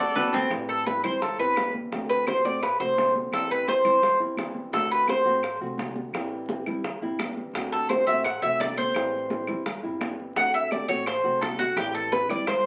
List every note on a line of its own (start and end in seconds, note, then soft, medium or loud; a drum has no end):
0.00 0.32 D2 medium
0.00 0.15 A3 soft
0.00 0.16 C4 soft
0.00 0.15 F#4 soft
0.00 1.92 F#4 medium
0.00 0.33 A4 medium
0.00 0.35 D5 loud
0.15 0.50 D3 medium
0.15 0.51 A3 medium
0.15 0.51 C4 medium
0.15 0.52 F#4 medium
0.15 1.93 B4 loud
0.15 low bongo medium
0.15 high conga medium
0.33 0.50 D2 loud
0.33 0.51 C4 medium
0.33 2.23 A4 medium
0.33 low bongo medium
0.33 high conga medium
0.50 1.01 A1 loud
0.50 0.85 E3 medium
0.50 0.86 G3 medium
0.50 0.86 C4 medium
0.50 0.86 E4 medium
0.50 high bongo medium
0.50 high conga soft
0.50 claves medium
0.69 0.86 A4 medium
0.69 high conga soft
0.86 1.03 E3 soft
0.86 1.04 G3 soft
0.86 1.04 C4 soft
0.86 1.03 E4 soft
0.86 1.03 B4 medium
0.86 high bongo soft
0.86 high conga medium
1.03 1.37 E2 medium
1.03 1.20 G3 medium
1.03 1.21 C4 medium
1.03 1.21 E4 medium
1.03 1.21 C5 medium
1.03 high conga soft
1.03 low conga medium
1.03 claves medium
1.21 1.39 A4 medium
1.21 muted nylon-string guitar stroke medium
1.21 high bongo medium
1.21 high conga soft
1.21 low conga medium
1.38 1.89 G1 medium
1.38 1.56 G3 medium
1.38 1.57 C4 medium
1.38 1.56 E4 medium
1.38 1.72 B4 medium
1.38 high conga soft
1.56 1.91 E3 medium
1.56 1.92 G3 soft
1.56 1.92 C4 soft
1.56 1.92 E4 medium
1.56 high bongo medium
1.56 low bongo medium
1.56 high conga medium
1.56 claves medium
1.74 high conga medium
1.92 2.42 D2 loud
1.92 2.26 D3 medium
1.92 2.27 A3 medium
1.92 2.27 C4 medium
1.92 2.27 F#4 medium
1.92 high bongo medium
1.92 high conga soft
2.09 2.27 B4 medium
2.09 high bongo soft
2.09 high conga soft
2.27 2.44 D3 soft
2.27 2.44 A3 soft
2.27 2.44 C4 soft
2.27 2.43 F#4 medium
2.27 2.44 C5 medium
2.27 high bongo medium
2.27 high conga medium
2.27 claves medium
2.44 2.78 A1 medium
2.44 2.61 A3 medium
2.44 2.61 C4 medium
2.44 2.62 F#4 medium
2.44 2.62 D5 medium
2.44 high conga soft
2.62 2.79 B4 medium
2.62 muted nylon-string guitar stroke medium
2.62 high bongo medium
2.62 high conga soft
2.62 claves medium
2.80 3.30 C2 medium
2.80 2.96 A3 medium
2.80 2.97 C4 medium
2.80 2.97 F#4 medium
2.80 3.13 C5 medium
2.80 high bongo soft
2.80 high conga soft
2.97 3.32 D3 soft
2.97 3.32 C4 medium
2.97 3.32 F#4 medium
2.97 high bongo medium
2.97 low bongo medium
2.97 high conga medium
3.16 high conga medium
3.32 3.82 A1 medium
3.32 3.66 E3 medium
3.32 3.67 G3 medium
3.32 3.67 C4 medium
3.32 3.67 E4 medium
3.32 3.50 A4 medium
3.32 high bongo medium
3.32 high conga soft
3.32 claves medium
3.50 3.68 B4 medium
3.50 high conga soft
3.67 3.84 E3 soft
3.67 3.85 G3 soft
3.67 3.84 C4 medium
3.67 3.83 E4 medium
3.67 4.17 C5 medium
3.67 high bongo soft
3.67 high conga medium
3.84 4.18 E2 medium
3.84 4.01 G3 medium
3.84 4.01 C4 medium
3.84 4.02 E4 medium
3.84 high conga soft
3.84 low conga medium
3.84 claves medium
4.02 muted nylon-string guitar stroke medium
4.02 high bongo medium
4.02 high conga soft
4.02 low conga medium
4.20 4.70 G1 medium
4.20 4.37 G3 medium
4.20 4.38 C4 medium
4.20 4.37 E4 medium
4.20 high conga soft
4.37 4.72 E3 soft
4.37 4.73 G3 soft
4.37 4.72 C4 soft
4.37 4.73 E4 medium
4.37 high bongo medium
4.37 low bongo medium
4.37 high conga medium
4.37 claves medium
4.54 high conga medium
4.72 5.23 D2 loud
4.72 5.06 D3 medium
4.72 5.07 A3 medium
4.72 5.08 C4 medium
4.72 5.08 F#4 medium
4.72 4.90 A4 medium
4.72 high bongo medium
4.72 high conga soft
4.91 5.08 B4 medium
4.91 high bongo soft
4.91 high conga soft
5.08 5.25 D3 soft
5.08 5.25 A3 soft
5.08 5.25 C4 medium
5.08 5.24 F#4 medium
5.08 5.58 C5 medium
5.08 high bongo soft
5.08 high conga medium
5.08 claves medium
5.25 5.59 A1 medium
5.25 5.43 A3 medium
5.25 5.43 C4 medium
5.25 5.43 F#4 medium
5.25 high bongo soft
5.25 high conga soft
5.43 high bongo medium
5.43 high conga soft
5.43 claves medium
5.61 6.11 C2 medium
5.61 5.79 A3 medium
5.61 5.79 C4 medium
5.61 5.78 F#4 medium
5.61 high bongo soft
5.61 high conga soft
5.78 6.14 D3 soft
5.78 6.14 A3 soft
5.78 6.14 C4 medium
5.78 6.15 F#4 medium
5.78 high bongo medium
5.78 low bongo medium
5.78 high conga medium
5.95 high conga medium
6.13 6.64 A1 medium
6.13 6.49 E3 medium
6.13 6.49 G3 medium
6.13 6.49 C4 medium
6.13 6.50 E4 medium
6.13 high bongo medium
6.13 high conga soft
6.13 claves medium
6.31 high conga soft
6.49 6.66 E3 soft
6.49 6.67 G3 soft
6.49 6.67 C4 medium
6.49 6.66 E4 medium
6.49 high bongo medium
6.49 high conga medium
6.66 7.00 E2 medium
6.66 6.84 G3 medium
6.66 6.84 C4 medium
6.66 6.84 E4 medium
6.66 high conga soft
6.66 low conga medium
6.66 claves medium
6.84 muted nylon-string guitar stroke medium
6.84 high bongo medium
6.84 high conga soft
6.84 low conga medium
7.01 7.52 G1 medium
7.01 7.19 G3 medium
7.01 7.19 C4 medium
7.01 7.19 E4 medium
7.01 high conga soft
7.19 7.54 E3 soft
7.19 7.54 G3 soft
7.19 7.55 C4 soft
7.19 7.55 E4 medium
7.19 high bongo medium
7.19 low bongo medium
7.19 high conga medium
7.19 claves medium
7.37 high conga medium
7.53 8.04 D2 loud
7.53 7.89 D3 medium
7.53 7.89 A3 medium
7.53 7.90 C4 medium
7.53 7.90 F#4 medium
7.53 high bongo medium
7.53 high conga soft
7.72 7.89 A4 medium
7.72 high bongo soft
7.72 high conga soft
7.89 8.07 D3 soft
7.89 8.07 A3 medium
7.89 8.07 C4 medium
7.89 8.06 F#4 medium
7.89 8.06 C5 medium
7.89 high bongo medium
7.89 high conga loud
7.89 claves medium
8.07 8.41 A1 medium
8.07 8.25 A3 medium
8.07 8.25 C4 medium
8.07 8.24 F#4 medium
8.07 8.24 E5 medium
8.07 high bongo soft
8.07 high conga soft
8.24 8.42 F#5 medium
8.24 muted nylon-string guitar stroke medium
8.24 high bongo medium
8.24 high conga soft
8.24 claves medium
8.42 8.92 C2 medium
8.42 8.60 A3 soft
8.42 8.60 C4 medium
8.42 8.60 F#4 medium
8.42 8.59 E5 medium
8.42 high bongo soft
8.42 high conga soft
8.60 8.94 D3 soft
8.60 8.95 A3 soft
8.60 8.95 C4 medium
8.60 8.96 F#4 soft
8.60 8.77 D5 medium
8.60 high bongo medium
8.60 low bongo medium
8.60 high conga medium
8.77 9.62 C5 medium
8.77 high conga medium
8.94 9.45 A1 medium
8.94 9.29 E3 medium
8.94 9.30 G3 medium
8.94 9.30 C4 medium
8.94 9.30 E4 medium
8.94 high bongo medium
8.94 high conga soft
8.94 claves medium
9.13 high conga soft
9.30 9.47 E3 soft
9.30 9.48 G3 soft
9.30 9.48 C4 soft
9.30 9.47 E4 medium
9.30 high bongo medium
9.30 high conga medium
9.47 9.81 E2 medium
9.47 9.65 G3 medium
9.47 9.65 C4 medium
9.47 9.65 E4 medium
9.47 high conga soft
9.47 low conga medium
9.47 claves medium
9.66 muted nylon-string guitar stroke medium
9.66 high bongo medium
9.66 high conga soft
9.66 low conga medium
9.83 10.33 G1 medium
9.83 10.00 G3 medium
9.83 10.00 C4 medium
9.83 10.00 E4 medium
9.83 high conga soft
10.00 10.35 E3 medium
10.00 10.35 G3 soft
10.00 10.36 C4 medium
10.00 10.36 E4 medium
10.00 high bongo medium
10.00 low bongo medium
10.00 high conga medium
10.00 claves medium
10.35 10.86 D2 medium
10.35 10.70 D3 medium
10.35 10.71 A3 medium
10.35 10.71 C4 medium
10.35 10.71 F#4 medium
10.35 10.53 F#5 medium
10.35 high bongo medium
10.35 high conga soft
10.54 10.71 E5 medium
10.54 high bongo soft
10.54 high conga soft
10.71 10.88 D3 soft
10.71 10.89 A3 soft
10.71 10.88 C4 soft
10.71 10.88 F#4 medium
10.71 10.88 D5 medium
10.71 high bongo medium
10.71 high conga medium
10.71 claves medium
10.88 11.22 A1 medium
10.88 11.05 A3 medium
10.88 11.06 C4 medium
10.88 11.06 F#4 medium
10.88 11.06 C#5 medium
10.88 high bongo soft
10.88 high conga soft
11.06 11.39 C5 medium
11.06 muted nylon-string guitar stroke medium
11.06 high bongo medium
11.06 high conga soft
11.06 claves medium
11.24 11.74 C2 medium
11.24 11.41 A3 medium
11.24 11.42 C4 medium
11.24 11.41 F#4 medium
11.24 high bongo soft
11.24 high conga soft
11.41 11.76 D3 soft
11.41 11.77 A3 soft
11.41 11.77 C4 medium
11.41 11.77 F#4 medium
11.41 11.59 A4 medium
11.41 high bongo medium
11.41 low bongo medium
11.41 high conga medium
11.59 11.76 F#4 medium
11.59 high conga medium
11.76 12.27 A1 loud
11.76 12.11 E3 medium
11.76 12.11 G3 medium
11.76 12.12 C4 medium
11.76 12.12 E4 medium
11.76 11.94 G4 medium
11.76 high bongo medium
11.76 high conga soft
11.76 claves medium
11.95 12.12 A4 medium
11.95 high conga soft
12.12 12.29 E3 soft
12.12 12.29 G3 soft
12.12 12.29 C4 soft
12.12 12.28 E4 medium
12.12 12.29 B4 medium
12.12 high bongo medium
12.12 high conga medium
12.29 12.63 E2 medium
12.29 12.46 G3 medium
12.29 12.46 C4 medium
12.29 12.46 E4 medium
12.29 12.47 D5 medium
12.29 high conga soft
12.29 low conga medium
12.29 claves medium
12.47 12.66 C5 medium
12.47 muted nylon-string guitar stroke medium
12.47 high bongo medium
12.47 high conga soft
12.47 low conga medium